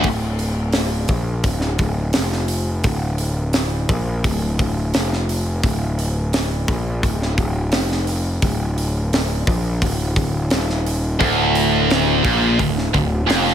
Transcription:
0.04 picked electric bass D1, kick, open hi-hat
0.39 open hi-hat
0.73 snare, open hi-hat
1.08 picked electric bass A#1, kick, open hi-hat
1.44 picked electric bass D1, kick, open hi-hat
1.61 snare
1.79 picked electric bass D1, kick, open hi-hat
2.13 picked electric bass F1, snare, open hi-hat
2.32 snare
2.48 open hi-hat
2.84 picked electric bass D1, kick, open hi-hat
3.18 open hi-hat
3.53 snare, open hi-hat
3.89 picked electric bass A#1, kick, open hi-hat
4.24 picked electric bass D1, kick, open hi-hat
4.59 picked electric bass D1, kick, open hi-hat
4.94 picked electric bass F1, snare, open hi-hat
5.13 snare
5.29 open hi-hat
5.63 picked electric bass D1, kick, open hi-hat
5.99 open hi-hat
6.33 snare, open hi-hat
6.68 picked electric bass A#1, kick, open hi-hat
7.03 picked electric bass D1, kick, open hi-hat
7.22 snare
7.38 picked electric bass D1, kick, open hi-hat
7.72 picked electric bass F1, snare, open hi-hat
7.92 snare
8.07 open hi-hat
8.42 picked electric bass D1, kick, open hi-hat
8.78 open hi-hat
9.13 snare, open hi-hat
9.47 picked electric bass A#1, kick, open hi-hat
9.82 picked electric bass D1, kick, open hi-hat
10.16 picked electric bass D1, kick, open hi-hat
10.50 picked electric bass D#1, snare, open hi-hat
10.70 snare
10.86 open hi-hat
11.20 picked electric bass D1, distorted electric guitar D2, kick, open hi-hat
11.55 open hi-hat
11.90 snare, open hi-hat
12.24 picked electric bass A#1, distorted electric guitar A#2, kick, open hi-hat
12.59 picked electric bass D1, distorted electric guitar D2, kick, open hi-hat
12.78 snare
12.94 picked electric bass D1, distorted electric guitar D2, kick, open hi-hat
13.27 picked electric bass F1, distorted electric guitar F2, snare, open hi-hat
13.48 snare

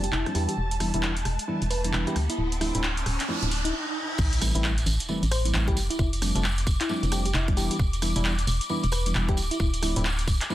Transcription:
Already playing: fm bass F1, ambient pad A5, riser
0.04 fm electric piano G4, closed hi-hat
0.12 fm bass F1, fm electric piano E4, clap
0.26 tine electric piano F3 G3 A3 C4 D4, cross-stick, closed hi-hat
0.35 fm bass E2, tine electric piano E3 G3 B3 D4 E4, fm electric piano G4, open hi-hat
0.48 fm electric piano G4, closed hi-hat
0.58 fm bass E1
0.71 closed hi-hat
0.80 tine electric piano E3 G3 B3 D4 E4, cross-stick, open hi-hat
0.94 fm bass E1, tine electric piano E3 G3 B3 D4 E4, closed hi-hat
1.03 clap
1.17 closed hi-hat
1.25 fm bass E1, cross-stick, open hi-hat
1.39 closed hi-hat
1.48 tine electric piano E3 G3 B3 D4 E4
1.62 fm bass E1, closed hi-hat
1.70 fm electric piano B4, open hi-hat
1.84 tine electric piano E3 G3 B3 D4 E4, closed hi-hat
1.93 fm bass E1, tine electric piano E3 G3 B3 D4 E4, clap
2.07 tine electric piano E3 G3 B3 D4 E4, fm electric piano G4, closed hi-hat
2.16 fm bass D2, cross-stick, open hi-hat
2.30 fm electric piano E4, closed hi-hat
2.38 fm bass D1, fm electric piano E4, noise sweep
2.52 closed hi-hat
2.61 tine electric piano F3 A3 C4 D4 E4, fm electric piano E4, cross-stick, open hi-hat
2.75 fm bass D1, tine electric piano F3 A3 C4 D4 E4, closed hi-hat
2.83 clap
2.97 closed hi-hat
3.06 fm bass D1, cross-stick, open hi-hat
3.20 clap, closed hi-hat
3.28 tine electric piano F3 A3 C4 D4 E4
3.42 fm bass D1, closed hi-hat
3.51 open hi-hat
3.65 fm electric piano E4, closed hi-hat
4.18 fm bass A1, ambient pad D6, kick, crash, tambourine, sub drop
4.32 closed hi-hat, tambourine
4.41 tine electric piano E3 G3 A3 C4 E4, cross-stick, open hi-hat, tambourine
4.55 fm bass A1, tine electric piano E3 G3 A3 C4 E4, closed hi-hat, tambourine
4.64 clap, tambourine
4.77 closed hi-hat, tambourine
4.86 fm bass A1, open hi-hat, tambourine
5.00 closed hi-hat, tambourine
5.09 tine electric piano E3 G3 A3 C4 E4, tambourine
5.23 fm bass A1, closed hi-hat, tambourine
5.31 fm electric piano C5, cross-stick, open hi-hat, tambourine
5.45 tine electric piano E3 G3 A3 C4 E4, closed hi-hat, tambourine
5.54 fm bass A1, tine electric piano E3 G3 A3 C4 E4, clap, tambourine
5.68 tine electric piano E3 G3 A3 C4 E4, fm electric piano G4, kick, closed hi-hat
5.76 fm bass F1, open hi-hat, tambourine
5.90 fm electric piano E4, closed hi-hat, tambourine
5.99 fm bass F1, fm electric piano E4, kick, tambourine
6.13 closed hi-hat, tambourine
6.22 tine electric piano F3 G3 A3 C4 D4, cross-stick, open hi-hat, tambourine
6.35 fm bass F1, tine electric piano F3 G3 A3 C4 D4, closed hi-hat, tambourine
6.44 clap, tambourine
6.58 closed hi-hat, tambourine
6.67 fm bass F1, kick, open hi-hat, tambourine
6.80 fm electric piano E4, clap, closed hi-hat, tambourine
6.89 tine electric piano F3 G3 A3 C4 D4, tambourine
7.03 fm bass F1, closed hi-hat, tambourine
7.12 tine electric piano F3 G3 A3 C4 D4, fm electric piano G4, cross-stick, open hi-hat, tambourine
7.26 fm electric piano G4, closed hi-hat, tambourine
7.34 fm bass F1, fm electric piano E4, clap, tambourine
7.48 tine electric piano F3 G3 A3 C4 D4, kick, cross-stick, closed hi-hat
7.57 fm bass E1, tine electric piano E3 G3 B3 D4 E4, fm electric piano G4, open hi-hat, tambourine
7.71 fm electric piano G4, closed hi-hat, tambourine
7.79 fm bass E1, kick, tambourine
7.93 closed hi-hat, tambourine
8.02 tine electric piano E3 G3 B3 D4 E4, cross-stick, open hi-hat, tambourine
8.16 fm bass E1, tine electric piano E3 G3 B3 D4 E4, closed hi-hat, tambourine
8.25 clap, tambourine
8.38 closed hi-hat, tambourine
8.47 fm bass E1, open hi-hat, tambourine
8.61 closed hi-hat, tambourine
8.69 tine electric piano E3 G3 B3 D4 E4, tambourine
8.83 fm bass E1, closed hi-hat, tambourine
8.92 fm electric piano B4, cross-stick, open hi-hat, tambourine
9.06 tine electric piano E3 G3 B3 D4 E4, closed hi-hat, tambourine
9.14 fm bass E1, tine electric piano E3 G3 B3 D4 E4, clap, tambourine
9.28 tine electric piano E3 G3 B3 D4 E4, fm electric piano G4, kick, closed hi-hat
9.37 fm bass D1, open hi-hat, tambourine
9.51 fm electric piano E4, closed hi-hat, tambourine
9.60 fm bass D1, fm electric piano E4, kick, tambourine
9.73 closed hi-hat, tambourine
9.82 tine electric piano F3 A3 C4 D4 E4, fm electric piano E4, cross-stick, open hi-hat, tambourine
9.96 fm bass D1, tine electric piano F3 A3 C4 D4 E4, closed hi-hat, tambourine
10.05 clap, tambourine
10.19 closed hi-hat, tambourine
10.27 fm bass D1, kick, open hi-hat, tambourine
10.41 clap, closed hi-hat, tambourine
10.50 tine electric piano F3 A3 C4 D4 E4, tambourine

